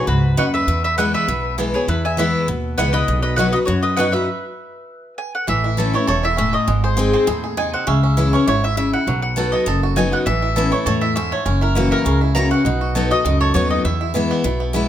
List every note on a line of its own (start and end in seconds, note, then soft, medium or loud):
0.07 0.33 C#2 medium
0.07 0.36 G#2 medium
0.07 0.36 F#4 medium
0.07 0.38 B4 medium
0.37 0.63 D#2 medium
0.37 0.66 F#2 loud
0.37 0.45 B3 medium
0.37 0.45 D#4 medium
0.37 0.45 F#4 medium
0.37 0.53 B4 medium
0.37 0.53 F#5 medium
0.54 0.82 B4 medium
0.54 0.82 E5 medium
0.67 1.13 E2 medium
0.67 1.25 E2 medium
0.84 0.97 B4 medium
0.84 0.97 E5 medium
0.98 1.26 E3 medium
0.98 1.27 G#3 medium
0.98 1.05 B3 medium
0.98 1.27 B3 medium
0.98 1.01 E4 medium
0.98 1.28 E4 loud
0.98 1.13 B4 medium
0.98 1.13 F#5 medium
1.14 1.55 B4 medium
1.14 1.55 E5 medium
1.28 1.74 B1 medium
1.28 1.85 B2 medium
1.58 1.73 E3 medium
1.58 1.74 G#3 medium
1.58 1.65 B3 medium
1.58 1.74 B3 medium
1.58 1.61 E4 medium
1.58 1.73 E4 medium
1.74 1.89 B3 soft
1.74 1.87 E4 medium
1.74 1.88 G#4 medium
1.74 1.87 C#5 medium
1.88 2.34 E2 medium
1.88 2.46 E2 medium
1.88 2.03 E4 medium
1.88 2.05 B4 medium
2.05 2.18 E5 medium
2.05 2.18 G#5 medium
2.17 2.46 E3 medium
2.17 2.47 G#3 medium
2.17 2.25 B3 medium
2.17 2.47 B3 loud
2.17 2.21 E4 medium
2.17 2.47 E4 loud
2.17 2.47 B4 medium
2.17 2.46 E5 medium
2.48 2.74 D#2 medium
2.48 3.05 B2 medium
2.78 3.04 C#2 medium
2.78 2.93 E3 medium
2.78 2.94 G#3 medium
2.78 2.85 B3 medium
2.78 2.94 B3 loud
2.78 2.81 E4 medium
2.78 2.93 E4 loud
2.78 2.92 B4 medium
2.78 2.94 F#5 loud
2.93 3.09 B3 soft
2.93 3.07 E4 medium
2.93 3.21 B4 medium
2.93 3.21 D#5 medium
3.08 3.54 B1 medium
3.08 3.65 B2 medium
3.22 3.36 B4 medium
3.22 3.36 D#5 medium
3.36 3.53 F#3 medium
3.36 3.54 B3 medium
3.36 3.46 B3 medium
3.36 3.46 D#4 medium
3.36 3.54 D#4 loud
3.36 3.46 F#4 medium
3.36 3.52 F#4 medium
3.36 3.52 B4 medium
3.36 3.52 F#5 loud
3.53 3.69 D#4 medium
3.53 3.67 F#4 medium
3.53 3.58 B4 medium
3.53 3.58 D#5 medium
3.65 4.25 F#2 medium
3.65 4.14 F#2 medium
3.65 3.82 F#4 medium
3.65 3.82 C#5 medium
3.83 3.96 B4 medium
3.83 3.98 D#5 loud
3.96 4.13 F#3 medium
3.96 4.06 B3 medium
3.96 4.14 B3 loud
3.96 4.14 D#4 medium
3.96 4.06 D#4 medium
3.96 4.06 F#4 medium
3.96 4.13 F#4 loud
3.96 4.12 B4 medium
3.96 4.12 F#5 medium
4.12 4.28 F#4 medium
4.12 5.14 B4 medium
4.12 5.13 E5 medium
4.16 4.29 D#4 soft
5.18 5.33 G#5 medium
5.35 5.47 F#5 medium
5.47 5.94 A1 loud
5.47 6.05 A2 loud
5.47 5.91 E3 medium
5.47 5.91 E5 medium
5.64 6.05 E4 medium
5.77 5.93 E3 medium
5.77 5.94 A3 medium
5.77 5.94 C#4 medium
5.77 5.92 E4 medium
5.77 6.06 A4 medium
5.93 6.35 A3 medium
5.93 6.08 C#4 soft
5.93 6.07 E4 medium
5.93 6.07 C#5 medium
6.07 6.54 E1 medium
6.07 6.37 E2 medium
6.07 6.51 A4 medium
6.07 6.23 C#5 medium
6.23 6.65 E4 medium
6.23 6.37 E5 medium
6.37 6.67 A2 loud
6.37 6.68 C#4 medium
6.37 6.53 E5 medium
6.53 6.67 A3 medium
6.53 6.84 D#5 medium
6.67 7.14 G#1 loud
6.67 7.25 G#2 medium
6.67 7.10 G#3 medium
6.84 6.96 G#4 medium
6.84 7.12 C5 medium
6.97 7.26 G#3 loud
6.97 7.26 C4 loud
6.97 7.27 D#4 medium
6.97 7.26 G#4 medium
6.97 7.27 G#4 loud
7.13 7.55 C4 medium
7.13 7.42 C5 medium
7.27 7.73 D#2 medium
7.27 7.56 A2 loud
7.27 7.42 G#4 medium
7.44 7.85 G#4 medium
7.57 7.86 C3 medium
7.57 7.88 D#4 medium
7.57 7.73 G#5 loud
7.73 7.87 C4 medium
7.73 7.87 F#5 medium
7.87 8.33 C#2 loud
7.87 8.44 C#3 medium
7.87 8.02 C#4 medium
7.87 8.34 E5 medium
8.03 8.32 C#4 medium
8.17 8.33 E3 loud
8.17 8.33 G#3 medium
8.17 8.33 C#4 medium
8.17 8.46 E4 medium
8.17 8.32 E4 medium
8.33 8.74 C#4 medium
8.33 8.48 C#4 medium
8.33 8.47 E4 medium
8.33 8.47 C#5 medium
8.47 8.93 G#1 medium
8.47 8.76 G#2 loud
8.47 8.62 E4 medium
8.47 8.63 C#5 loud
8.64 8.76 E4 medium
8.64 8.76 E5 loud
8.77 9.06 C#3 loud
8.77 8.92 E4 medium
8.77 8.92 E5 medium
8.93 9.07 E4 medium
8.93 9.21 F#5 medium
9.07 9.53 B1 loud
9.07 9.64 B2 medium
9.07 9.50 F#3 medium
9.22 9.50 F#5 medium
9.36 9.65 F#3 medium
9.36 9.65 B3 medium
9.36 9.66 D#4 loud
9.36 9.66 F#4 medium
9.36 9.66 A4 medium
9.52 9.94 B3 medium
9.52 9.80 D#5 medium
9.66 10.12 F#1 medium
9.66 10.23 F#2 loud
9.66 10.10 A4 medium
9.83 10.24 F#4 medium
9.96 10.25 F#3 medium
9.96 10.25 B3 loud
9.96 10.27 D#4 medium
9.96 10.26 D#4 medium
9.96 10.26 F#4 loud
9.96 10.12 G#5 loud
10.12 10.26 B3 medium
10.12 10.18 F#5 medium
10.26 10.72 A1 loud
10.26 10.83 A2 medium
10.26 10.69 E3 medium
10.26 10.69 E5 loud
10.42 10.83 E4 medium
10.56 10.71 E3 medium
10.56 10.72 B3 medium
10.56 10.72 C#4 loud
10.56 10.71 E4 loud
10.56 10.85 A4 medium
10.72 11.13 A3 medium
10.72 10.87 C#4 medium
10.72 10.85 E4 medium
10.72 10.85 C#5 medium
10.86 11.32 E2 medium
10.86 11.15 A2 loud
10.86 11.29 A4 medium
10.86 11.03 C#5 medium
11.01 11.43 E4 medium
11.01 11.14 E5 medium
11.16 11.45 G#2 loud
11.16 11.44 C#4 medium
11.16 11.32 E5 loud
11.32 11.46 A3 medium
11.32 11.62 C#5 loud
11.46 11.91 F#1 medium
11.46 12.03 F#2 medium
11.46 11.88 C#4 medium
11.61 11.74 E4 medium
11.61 11.91 A#4 medium
11.75 12.04 E3 medium
11.75 12.05 A#3 loud
11.75 12.05 C#4 loud
11.75 11.90 E4 medium
11.75 12.05 F#4 loud
11.91 12.20 E4 medium
11.91 12.20 A#4 loud
12.05 12.51 C#2 medium
12.05 12.63 C#3 loud
12.05 12.48 C#4 medium
12.21 12.34 E4 medium
12.35 12.51 E3 medium
12.35 12.51 A#3 medium
12.35 12.51 C#4 loud
12.35 12.65 E4 medium
12.35 12.50 F#4 loud
12.35 12.50 A#5 loud
12.51 12.64 C#4 medium
12.51 12.66 C#4 soft
12.51 12.64 F#4 medium
12.51 13.07 F#5 medium
12.65 13.11 B1 loud
12.65 13.23 B2 medium
12.65 13.08 D#4 medium
12.81 13.09 F#4 medium
12.95 13.11 F#3 loud
12.95 13.11 B3 medium
12.95 13.11 D#4 loud
12.95 13.10 F#4 medium
12.95 13.38 A4 medium
13.11 13.26 D#4 medium
13.11 13.52 F#4 medium
13.11 13.25 F#4 medium
13.11 13.40 D#5 loud
13.25 13.50 C#2 medium
13.25 13.82 F#2 loud
13.25 13.68 D#4 medium
13.41 13.82 A4 medium
13.41 13.53 C#5 loud
13.54 13.80 D#2 medium
13.54 13.83 F#3 medium
13.54 13.84 B3 loud
13.54 13.84 D#4 medium
13.54 13.85 F#4 medium
13.54 13.84 F#4 loud
13.54 13.70 C#5 loud
13.70 13.84 D#4 medium
13.70 13.84 D#5 medium
13.85 14.30 E2 medium
13.85 14.42 E2 medium
13.85 14.00 E4 medium
13.85 14.70 E5 medium
14.01 14.14 E4 medium
14.14 14.43 E3 medium
14.14 14.43 G#3 medium
14.14 14.44 B3 loud
14.14 14.43 E4 medium
14.14 14.44 E4 loud
14.31 14.59 B3 medium
14.44 14.88 B1 medium
14.44 14.88 B2 loud
14.44 14.73 E4 medium
14.60 14.88 B3 medium
14.73 14.88 E3 medium
14.73 14.88 G#3 loud
14.73 14.88 B3 loud
14.73 14.88 E4 medium
14.73 14.88 E4 loud